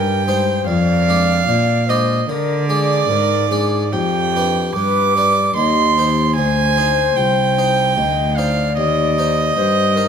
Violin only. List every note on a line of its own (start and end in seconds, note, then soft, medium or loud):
0.00 0.67 G5 medium
0.67 1.91 F5 loud
1.90 2.31 D#5 medium
2.30 3.95 D5 medium
3.93 4.75 G5 medium
4.76 5.55 D6 loud
5.57 6.35 C6 medium
6.36 7.19 G#5 loud
7.17 8.38 G5 medium
8.36 8.77 F5 medium
8.77 10.08 D#5 loud